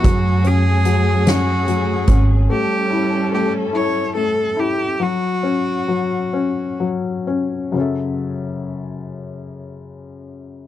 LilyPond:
<<
  \new Staff \with { instrumentName = "Cello" } { \time 6/8 \key fis \minor \tempo 4. = 46 fis'8 gis'4 fis'4 r8 | g'4 g'8 cis''8 a'8 g'8 | fis'2 r4 | r2. | }
  \new Staff \with { instrumentName = "Felt piano" } { \time 6/8 \key fis \minor fis8 cis'8 fis8 cis'8 fis8 cis'8 | a8 e'8 a8 e'8 a8 e'8 | fis8 cis'8 fis8 cis'8 fis8 cis'8 | <fis, cis fis cis' a' e''>2. | }
  \new Staff \with { instrumentName = "String section" } { \time 6/8 \key fis \minor <fis a gis'>2. | <g cis' a'>2. | r2. | r2. | }
  \new Staff \with { instrumentName = "Upright bass" } { \clef bass \time 6/8 \key fis \minor fis,2~ fis,8 gis,,8 | r2. | r2. | r2. | }
  \new DrumStaff \with { instrumentName = "Drums" } \drummode { \time 6/8 <hh bd>8 hh8 hh8 <hh sn>8 hh8 <hh bd>8 | r4. r4. | r4. r4. | r4. r4. | }
>>